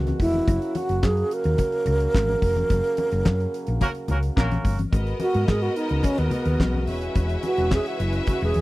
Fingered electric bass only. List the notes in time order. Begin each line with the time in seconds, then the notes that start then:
Already playing: C#2
0.20 F1
0.48 F#1
0.89 F#1
1.03 F#2
1.45 D#2
1.87 C#2
2.15 G#1
2.42 F1
2.70 F#1
3.12 F#1
3.26 F#2
3.68 A#1
4.10 C#2
4.37 A#1
4.65 G1
4.93 G#1
5.35 G#2
5.49 G#2
5.91 C#2
6.18 D#2
6.46 D#2
6.60 B1
6.88 E1
7.16 E1
7.58 E1
8.00 F#1
8.42 E1
8.56 E2